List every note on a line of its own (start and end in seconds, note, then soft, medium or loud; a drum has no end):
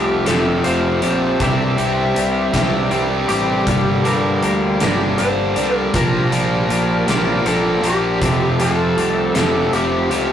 0.00 0.25 C2 medium
0.00 0.26 F2 medium
0.00 0.26 C3 medium
0.00 0.27 F3 medium
0.00 0.64 F3 medium
0.00 0.29 A3 medium
0.00 0.27 C4 medium
0.00 0.26 G4 medium
0.00 0.04 A4 medium
0.04 0.23 G4 medium
0.26 0.62 F1 medium
0.26 0.64 F2 medium
0.26 0.65 C3 medium
0.26 0.65 F3 loud
0.26 0.67 C4 medium
0.26 0.68 G4 medium
0.26 0.64 A4 medium
0.26 snare loud
0.26 closed hi-hat medium
0.30 0.65 A3 medium
0.64 1.01 F1 medium
0.64 1.01 F2 medium
0.64 1.02 C3 medium
0.64 1.38 F3 medium
0.64 1.02 F3 medium
0.64 1.06 A3 medium
0.64 1.04 C4 medium
0.64 1.42 C5 medium
0.64 closed hi-hat medium
0.68 1.02 G4 medium
1.02 1.37 A#1 medium
1.02 1.38 F2 medium
1.02 1.38 C3 medium
1.02 1.38 F3 medium
1.02 1.39 C4 medium
1.02 1.43 G4 medium
1.02 closed hi-hat medium
1.07 1.40 A3 medium
1.40 1.75 C2 medium
1.40 2.16 C3 medium
1.40 1.77 C3 medium
1.40 2.15 E3 medium
1.40 1.77 G3 medium
1.40 1.81 G3 medium
1.40 1.78 C4 medium
1.40 1.80 D4 medium
1.40 1.78 G4 medium
1.40 3.26 E5 loud
1.40 kick loud
1.40 closed hi-hat medium
1.78 2.13 C2 medium
1.78 2.52 C3 medium
1.78 2.54 G3 medium
1.78 2.17 G3 medium
1.78 2.53 C4 medium
1.78 2.18 D4 medium
1.78 2.19 G4 medium
1.78 closed hi-hat medium
2.16 2.51 C2 medium
2.16 2.90 E3 medium
2.16 2.57 G3 medium
2.16 2.56 D4 medium
2.16 2.53 G4 medium
2.16 closed hi-hat medium
2.53 2.88 C2 medium
2.53 2.90 C3 medium
2.53 2.92 G3 loud
2.53 2.91 C4 medium
2.53 2.93 D4 medium
2.53 2.94 G4 medium
2.53 kick medium
2.53 snare loud
2.53 closed hi-hat medium
2.58 2.92 G3 soft
2.91 3.26 C2 medium
2.91 3.28 C3 medium
2.91 3.64 E3 medium
2.91 3.29 G3 medium
2.91 3.32 G3 medium
2.91 3.29 C4 medium
2.91 3.30 D4 medium
2.91 3.28 G4 medium
2.91 closed hi-hat soft
3.28 3.64 A1 medium
3.28 3.64 C3 medium
3.28 3.67 G3 medium
3.28 3.69 G3 medium
3.28 3.65 C4 medium
3.28 3.69 D4 medium
3.28 3.70 G4 medium
3.28 4.07 G4 loud
3.28 closed hi-hat medium
3.66 4.02 G1 medium
3.66 4.03 G2 medium
3.66 4.42 G2 medium
3.66 4.03 D3 medium
3.66 4.43 D3 medium
3.66 4.07 F3 medium
3.66 4.04 G3 loud
3.66 4.07 A#3 medium
3.66 4.05 D4 medium
3.66 kick loud
3.66 closed hi-hat medium
3.71 4.04 G4 medium
4.04 4.79 G2 medium
4.04 4.40 G2 medium
4.04 4.80 D3 medium
4.04 4.41 F3 medium
4.04 4.82 G3 medium
4.04 4.42 A#3 medium
4.04 4.44 D4 medium
4.04 4.44 G4 medium
4.04 4.43 A#4 medium
4.04 closed hi-hat medium
4.41 4.78 D2 medium
4.41 4.83 F3 medium
4.41 4.81 A#3 medium
4.41 4.80 D4 medium
4.41 4.80 G4 medium
4.41 4.82 A#4 medium
4.41 closed hi-hat medium
4.80 5.16 G1 medium
4.80 5.17 G2 medium
4.80 5.17 D3 medium
4.80 5.17 F3 medium
4.80 5.19 G3 medium
4.80 5.18 A#3 medium
4.80 5.19 D4 medium
4.80 5.21 G4 medium
4.80 5.18 A#4 medium
4.80 snare loud
4.80 closed hi-hat medium
5.18 5.54 G1 medium
5.18 5.55 G2 medium
5.18 5.56 D3 medium
5.18 5.58 F3 medium
5.18 5.58 G3 medium
5.18 5.57 A#3 medium
5.18 5.55 D4 medium
5.18 5.54 G4 medium
5.18 5.76 C5 loud
5.18 closed hi-hat medium
5.55 5.91 C2 medium
5.55 5.92 G2 medium
5.55 5.92 D3 medium
5.55 5.93 F3 medium
5.55 5.94 G3 medium
5.55 5.92 A#3 medium
5.55 5.92 D4 medium
5.55 5.96 G4 medium
5.55 closed hi-hat medium
5.76 5.96 A#4 loud
5.93 6.29 A#1 medium
5.93 6.69 A#2 medium
5.93 6.31 A#2 medium
5.93 6.69 F3 medium
5.93 6.32 F3 medium
5.93 6.34 G3 medium
5.93 6.32 A#3 medium
5.93 6.32 D4 medium
5.93 6.31 G4 medium
5.93 7.47 A#4 medium
5.93 kick loud
5.93 closed hi-hat medium
6.31 6.66 A#1 medium
6.31 7.06 A#2 medium
6.31 7.07 F3 medium
6.31 6.70 G3 medium
6.31 7.08 A#3 medium
6.31 6.70 D4 medium
6.31 6.72 G4 medium
6.31 closed hi-hat medium
6.69 7.04 A#1 medium
6.69 7.44 F3 medium
6.69 7.10 G3 medium
6.69 7.08 D4 medium
6.69 7.07 G4 medium
6.69 closed hi-hat medium
7.07 7.42 A#1 medium
7.07 7.44 A#2 medium
7.07 7.45 F3 loud
7.07 7.45 A#3 loud
7.07 7.46 D4 medium
7.07 7.47 G4 medium
7.07 snare loud
7.07 closed hi-hat medium
7.12 7.45 G3 soft
7.45 7.80 A#1 medium
7.45 7.82 A#2 medium
7.45 8.18 F3 medium
7.45 7.82 F3 medium
7.45 7.86 G3 medium
7.45 7.83 A#3 medium
7.45 7.84 D4 medium
7.45 7.83 G4 medium
7.45 7.85 A4 medium
7.45 closed hi-hat medium
7.83 8.23 A#1 medium
7.83 8.18 A#2 medium
7.83 8.19 F3 medium
7.83 8.19 A#3 medium
7.83 8.20 D4 medium
7.83 8.19 G4 medium
7.83 8.56 G4 medium
7.83 closed hi-hat medium
7.87 8.20 G3 medium
8.21 8.56 F1 medium
8.21 8.59 F2 medium
8.21 8.60 C3 medium
8.21 8.96 F3 medium
8.21 8.61 F3 medium
8.21 8.63 A3 medium
8.21 8.61 C4 medium
8.21 kick loud
8.21 closed hi-hat medium
8.25 8.59 G4 medium
8.60 8.94 F2 medium
8.60 9.35 F2 medium
8.60 9.35 C3 medium
8.60 9.35 F3 loud
8.60 8.98 A3 medium
8.60 8.98 C4 medium
8.60 8.99 G4 medium
8.60 9.34 A4 medium
8.60 closed hi-hat medium
8.97 9.32 C2 medium
8.97 9.71 F3 medium
8.97 9.38 A3 medium
8.97 9.36 C4 medium
8.97 9.34 G4 medium
8.97 closed hi-hat medium
9.35 9.70 F1 medium
9.35 9.72 F2 medium
9.35 9.73 C3 medium
9.35 9.74 F3 medium
9.35 9.74 C4 medium
9.35 9.74 G4 medium
9.35 9.74 A4 medium
9.35 snare loud
9.35 closed hi-hat medium
9.39 9.73 A3 medium
9.72 10.07 F1 medium
9.72 10.10 F2 medium
9.72 10.10 C3 medium
9.72 10.32 F3 medium
9.72 10.11 F3 medium
9.72 10.13 A3 medium
9.72 10.11 C4 medium
9.72 10.32 G4 medium
9.72 10.09 G4 medium
9.72 closed hi-hat medium
10.09 10.32 C#2 medium
10.09 10.32 F2 medium
10.09 10.32 C3 medium
10.09 10.32 F3 medium
10.09 10.32 C4 medium
10.09 10.32 G4 medium
10.09 closed hi-hat medium
10.14 10.32 A3 medium